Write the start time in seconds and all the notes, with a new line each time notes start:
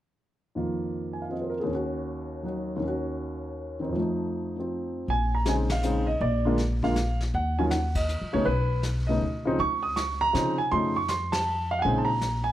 0.55 F2 D#3 A#3 F4
1.13 G#5
1.22 F5
1.30 F3 C4 F4 D#5
1.42 C5
1.50 A#4
1.60 D#2 G#4
1.67 D#3
1.71 C#4 F#4
2.43 F#3 D#4 F#4
2.76 D#2 D#3
2.83 C#4
2.88 F#4
3.80 D#3 C4 D#4
3.89 F2 F3
3.96 A3 D#4
4.57 F3 C4
5.08 A#1 G#5, brush sweep
5.35 A#5
5.45 C#3 G#3 C4 D#4 G#5, snare, hi-hat pedal
5.69 F5, snare, ride
5.83 C#3 G#3 C4 D#4, hi-hat pedal
6.07 D#5
6.21 A#1 D5, brush sweep
6.45 D3 G#3 A#3 F4
6.58 snare
6.83 D3 G#3 A#3 F4 F5, kick
6.96 snare, hi-hat pedal
7.21 snare
7.34 D#2 F#5, brush sweep
7.59 D#3 F#3 C#4 F4 G#5
7.71 F#5, snare, hi-hat pedal
7.95 D#5, kick, ride
8.09 hi-hat pedal
8.21 F2
8.33 C2 C#3 A3 B3 D#4 C#5
8.45 B1 B4, brush sweep
8.83 snare, hi-hat pedal
9.07 C#3 A3 B3 D#4 D#5
9.21 D2
9.45 C#3 F3 C4 D#4
9.59 C#2 C#6, brush sweep
9.83 D#6
9.96 C#6, snare, hi-hat pedal
10.21 A#5
10.33 C3 C#3 F3 C4 D#4, snare, hi-hat pedal
10.58 G#5
10.71 F2 C#3 F3 A3 D#4 C6, brush sweep
10.96 C#6
11.08 C6, snare, hi-hat pedal
11.32 A5, snare, ride
11.71 F5
11.79 F#5 G#5
11.84 A#1 C#3 G#3 C4 D#4, brush sweep
11.98 A5
12.05 A#5
12.21 snare, hi-hat pedal
12.44 G#5